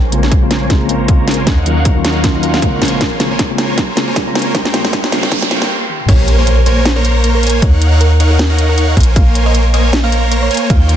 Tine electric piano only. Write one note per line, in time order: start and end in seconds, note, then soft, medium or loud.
0.11 0.22 C#3 medium
0.11 0.23 G#3 medium
0.11 0.23 A#3 medium
0.11 0.23 C4 medium
0.11 0.23 F4 loud
0.41 0.67 C#3 medium
0.41 0.68 G#3 medium
0.41 0.68 A#3 medium
0.41 0.68 C4 medium
0.41 0.68 F4 loud
0.69 0.87 C#3 medium
0.69 0.87 G#3 medium
0.69 0.87 A#3 medium
0.69 0.87 C4 medium
0.69 0.88 F4 loud
0.88 1.06 C#3 medium
0.88 1.06 G#3 medium
0.88 1.06 A#3 medium
0.88 1.07 C4 medium
0.88 1.07 F4 loud
1.07 1.35 C#3 medium
1.07 1.36 G#3 medium
1.07 1.36 A#3 medium
1.07 1.36 C4 medium
1.07 1.36 F4 medium
1.37 1.45 C#3 medium
1.37 1.46 G#3 medium
1.37 1.46 A#3 medium
1.37 1.46 C4 medium
1.37 1.46 F4 medium
1.65 1.76 D#3 medium
1.65 1.76 F#3 medium
1.65 1.77 A#3 medium
1.65 1.77 C#4 medium
1.65 1.77 F4 medium
1.95 2.21 D#3 loud
1.95 2.22 F#3 medium
1.95 2.22 A#3 medium
1.95 2.22 C#4 medium
1.95 2.22 F4 loud
2.23 2.41 D#3 medium
2.23 2.41 F#3 medium
2.23 2.41 A#3 medium
2.23 2.41 C#4 medium
2.23 2.42 F4 loud
2.42 2.60 D#3 medium
2.42 2.60 F#3 medium
2.42 2.60 A#3 medium
2.42 2.60 C#4 medium
2.42 2.61 F4 medium
2.61 2.89 C#3 medium
2.61 2.89 G#3 medium
2.61 2.90 A#3 medium
2.61 2.90 C4 medium
2.61 2.90 F4 medium
2.91 3.00 C#3 medium
2.91 3.00 G#3 medium
2.91 3.01 A#3 medium
2.91 3.01 C4 medium
2.91 3.01 F4 medium
3.19 3.30 C#3 medium
3.19 3.30 G#3 medium
3.19 3.30 A#3 medium
3.19 3.31 C4 medium
3.19 3.31 F4 medium
3.49 3.75 C#3 medium
3.49 3.75 G#3 medium
3.49 3.76 A#3 medium
3.49 3.76 C4 medium
3.49 3.76 F4 loud
3.96 4.07 C#3 medium
3.96 4.07 G#3 medium
3.96 4.07 A#3 medium
3.96 4.08 C4 medium
3.96 4.08 F4 medium
4.26 4.52 C#3 medium
4.26 4.52 G#3 medium
4.26 4.53 A#3 medium
4.26 4.53 C4 medium
4.26 4.53 F4 loud
4.73 4.84 C#3 medium
4.73 4.84 G3 medium
4.73 4.84 A#3 medium
4.73 4.85 C4 medium
4.73 4.85 F4 loud
5.11 5.22 C#3 medium
5.11 5.23 G3 medium
5.11 5.23 A#3 medium
5.11 5.23 C4 medium
5.11 5.23 F4 loud
5.31 5.42 C#3 medium
5.31 5.42 G3 medium
5.31 5.42 A#3 medium
5.31 5.42 C4 medium
5.31 5.43 F4 loud
5.50 5.61 C#3 medium
5.50 5.61 G3 medium
5.50 5.61 A#3 medium
5.50 5.62 C4 medium
5.50 5.62 F4 loud